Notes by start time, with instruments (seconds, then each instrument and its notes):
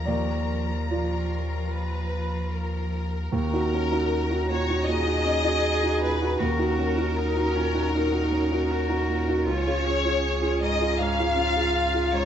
Already playing: sub bass D#2, string section F3 A#5, felt piano C#5
0.05 felt piano D#2 D5, cello F3, string section F4, violin section A#4
0.90 felt piano A#2 F4 D5, violin section A#4
1.71 violin section B4
2.52 violin section A#4
3.32 felt piano D#2, sub bass D#2, string section C#4 F#4 A#5, violin section A#4
3.53 felt piano D#4 F#4
3.73 felt piano C#4
3.92 felt piano D#4 F#4
4.30 felt piano D#4 F#4
4.50 felt piano A#2, violin section C#5
4.69 felt piano D#4 F#4
4.87 felt piano A#2, cello G#4, violin section D#5
5.06 felt piano D#4 F#4
5.25 felt piano C#4
5.44 felt piano D#4 F#4
5.83 felt piano D#4 F#4
6.02 felt piano A#2, violin section B4
6.21 felt piano D#4 F#4
6.38 felt piano D#2, sub bass D#2, string section C#4 F#4 A#4, cello F#4, violin section A#4
6.59 felt piano D#4 F#4
6.78 felt piano C#4
6.98 felt piano D#4 F#4
7.17 cello D#4
7.36 felt piano D#4 F#4
7.55 felt piano A#2, cello C#4
7.74 felt piano D#4 F#4
7.93 felt piano A#2, cello D#4
8.11 felt piano D#4 F#4
8.32 felt piano C#4
8.52 felt piano D#4 F#4
8.71 cello F#4
8.89 felt piano D#4 F#4
9.08 felt piano A#2
9.28 felt piano D#4 F#4
9.46 sub bass C#2, felt piano C#2, cello F4, string section F4 G#4, violin section C#5
9.67 felt piano F4 G#4
9.86 felt piano C#4, cello G#4
10.05 felt piano F4 G#4
10.42 felt piano F4 G#4
10.61 felt piano G#2, violin section D#5
10.81 felt piano F4 G#4
10.99 felt piano G#2, cello C#4, violin section F5
11.19 felt piano F4 G#4
11.36 felt piano C#4, cello F4
11.56 felt piano F4 G#4
11.94 felt piano F4 G#4
12.12 felt piano G#2, violin section C#5